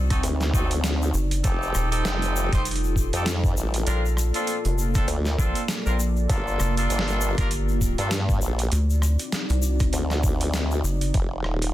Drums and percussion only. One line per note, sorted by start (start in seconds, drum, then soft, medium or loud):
0.10 kick loud
0.10 cross-stick soft
0.10 closed hi-hat medium
0.10 shaker soft
0.23 closed hi-hat medium
0.23 shaker soft
0.41 snare soft
0.41 shaker soft
0.54 kick loud
0.54 shaker medium
0.71 closed hi-hat medium
0.71 shaker soft
0.84 snare loud
0.84 closed hi-hat medium
0.84 shaker medium
1.02 shaker soft
1.14 shaker loud
1.31 closed hi-hat medium
1.31 shaker soft
1.44 kick loud
1.44 closed hi-hat medium
1.44 shaker medium
1.62 shaker soft
1.75 cross-stick soft
1.75 shaker loud
1.92 closed hi-hat medium
1.92 shaker soft
2.05 snare loud
2.05 closed hi-hat medium
2.05 shaker medium
2.22 closed hi-hat soft
2.22 shaker soft
2.36 shaker loud
2.53 kick loud
2.53 cross-stick soft
2.53 closed hi-hat medium
2.53 shaker soft
2.65 closed hi-hat medium
2.65 shaker medium
2.71 closed hi-hat medium
2.76 closed hi-hat soft
2.84 shaker soft
2.96 kick medium
2.96 shaker medium
3.13 closed hi-hat medium
3.13 shaker soft
3.26 snare loud
3.26 closed hi-hat medium
3.26 shaker medium
3.44 kick loud
3.44 shaker soft
3.57 shaker medium
3.74 closed hi-hat medium
3.74 shaker soft
3.87 closed hi-hat medium
3.87 shaker medium
4.06 shaker soft
4.17 cross-stick soft
4.17 shaker loud
4.34 closed hi-hat medium
4.34 shaker soft
4.47 closed hi-hat medium
4.47 shaker medium
4.65 closed hi-hat soft
4.65 shaker soft
4.78 shaker medium
4.95 kick loud
4.95 cross-stick soft
4.95 closed hi-hat medium
4.95 shaker soft
5.08 closed hi-hat medium
5.08 shaker medium
5.25 snare soft
5.25 shaker soft
5.39 kick loud
5.39 shaker medium
5.55 closed hi-hat medium
5.55 shaker soft
5.68 snare loud
5.68 closed hi-hat medium
5.68 shaker medium
5.86 shaker soft
6.00 shaker medium
6.16 shaker soft
6.30 kick loud
6.30 closed hi-hat medium
6.30 shaker medium
6.48 shaker soft
6.60 cross-stick medium
6.60 shaker loud
6.77 closed hi-hat medium
6.77 shaker soft
6.90 closed hi-hat medium
6.90 shaker medium
6.99 snare loud
7.08 closed hi-hat soft
7.08 shaker soft
7.21 shaker loud
7.38 kick loud
7.38 cross-stick soft
7.38 closed hi-hat medium
7.38 shaker soft
7.51 closed hi-hat medium
7.51 shaker medium
7.69 shaker soft
7.81 kick medium
7.81 shaker loud
7.98 closed hi-hat medium
7.98 shaker soft
8.11 snare loud
8.11 closed hi-hat medium
8.11 shaker medium
8.29 kick loud
8.29 shaker soft
8.42 shaker loud
8.59 closed hi-hat medium
8.59 shaker soft
8.72 closed hi-hat medium
8.72 shaker medium
8.90 shaker soft
9.02 cross-stick medium
9.02 shaker medium
9.19 closed hi-hat medium
9.19 shaker soft
9.32 snare loud
9.32 closed hi-hat medium
9.32 shaker soft
9.50 closed hi-hat soft
9.50 shaker soft
9.62 shaker medium
9.79 kick loud
9.79 cross-stick soft
9.79 closed hi-hat medium
9.79 shaker soft
9.93 closed hi-hat medium
9.93 shaker medium
10.10 snare soft
10.10 shaker soft
10.23 kick loud
10.23 shaker medium
10.41 closed hi-hat medium
10.41 shaker soft
10.53 snare loud
10.53 closed hi-hat medium
10.53 shaker medium
10.71 shaker soft
10.85 shaker medium
11.01 closed hi-hat medium
11.01 shaker soft
11.14 kick loud
11.14 closed hi-hat medium
11.44 cross-stick medium
11.62 closed hi-hat medium